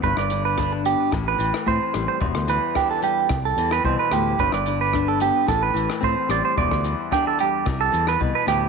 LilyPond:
<<
  \new Staff \with { instrumentName = "Clean electric guitar" } { \time 4/4 \key g \major \tempo 4 = 110 b'16 d''8 b'8 r16 g'8 r16 b'8 r16 c''8 r16 c''16 | r8 b'8 g'16 a'16 g'8 r16 a'8 b'16 c''16 b'16 g'8 | b'16 d''8 b'8 a'16 g'8 a'16 b'8 r16 c''8 d''16 c''16 | d''8 r8 g'16 a'16 g'8 r16 a'8 b'16 r16 b'16 g'8 | }
  \new Staff \with { instrumentName = "Nylon-string guitar" } { \clef bass \time 4/4 \key g \major << { r4 d'8 b8 r4 c'8 g8~ | g4 d'8 g2~ g8~ | g4 d'8 b8 r4 c'8 g8~ | g4 d'8 g2~ g8 | } \\ { g,8 d4. a,8 e4. | e,8 e4. r8 e8 b,8 a,8 | g,8 d4. a,8 e4. | e,8 e4. c8 e8 b,8 a,8 | } >> }
  \new Staff \with { instrumentName = "Fingered electric bass" } { \clef bass \time 4/4 \key g \major g,,16 g,,4.~ g,,16 a,,8 a,,16 r16 a,16 r16 a,,16 r16 | e,,16 d,8 r4 r16 c,8 e,8 c,16 r16 d,8 | g,,16 g,,4.~ g,,16 a,,8 a,,16 r16 a,16 r16 a,,16 r16 | e,,16 d,8 r4 r16 c,8 e,8 c,16 r16 d,8 | }
  \new DrumStaff \with { instrumentName = "Drums" } \drummode { \time 4/4 bd16 ss16 hh8 <bd ss>8 hh8 <bd ss>8 hh16 ss16 bd8 <hh ss>8 | bd16 ss16 hh8 <bd ss>8 hh8 <bd ss>8 hh16 ss16 bd8 <hh ss>8 | bd16 ss16 hh8 <bd ss>8 hh8 <bd ss>8 hh16 ss16 bd8 <hh ss>8 | bd16 <bd ss>16 hh8 <bd ss>8 hh8 <bd ss>8 hh16 ss16 bd8 <hh ss>8 | }
>>